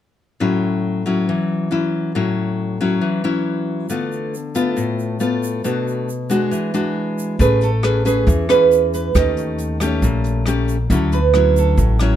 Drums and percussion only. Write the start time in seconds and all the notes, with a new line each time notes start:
3.89 shaker
4.12 shaker
4.34 shaker
4.55 shaker
4.77 shaker
4.99 shaker
5.20 shaker
5.43 shaker
5.65 shaker
5.88 shaker
6.09 shaker
6.30 shaker
6.52 shaker
6.75 shaker
7.19 shaker
7.39 kick, closed hi-hat, shaker
7.61 closed hi-hat, shaker
7.83 cross-stick, closed hi-hat
8.05 closed hi-hat, shaker
8.27 kick, closed hi-hat, shaker
8.49 cross-stick, closed hi-hat, shaker
8.71 closed hi-hat, shaker
8.93 closed hi-hat, shaker
9.15 kick, cross-stick, closed hi-hat, shaker
9.37 closed hi-hat, shaker
9.58 closed hi-hat, shaker
9.80 cross-stick, closed hi-hat, shaker
10.02 kick, closed hi-hat, shaker
10.24 closed hi-hat, shaker
10.46 cross-stick, closed hi-hat, shaker
10.68 closed hi-hat, shaker
10.90 kick, closed hi-hat, shaker
11.12 closed hi-hat, shaker
11.34 cross-stick, closed hi-hat
11.56 closed hi-hat, shaker
11.77 kick, closed hi-hat, shaker
11.99 cross-stick, closed hi-hat, shaker